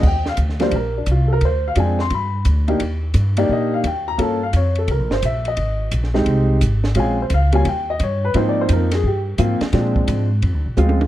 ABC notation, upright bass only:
X:1
M:4/4
L:1/8
Q:"Swing" 1/4=173
K:Eb
V:1 name="Upright bass" clef=bass
E,,2 D,,2 B,,,2 C,,2 | D,,2 F,,2 G,,2 D,,2 | E,,2 G,,2 B,,2 E,,2 | G,,2 F,,2 (3C,, B,,, G,,, B,,,2 |
A,,,2 B,,,2 C,,2 A,,,2 | B,,,2 _D,,2 E,,2 G,,2 | A,,2 F,,2 G,,2 A,, z | B,,2 A,,2 (3F,, D,, B,,, D,,2 |]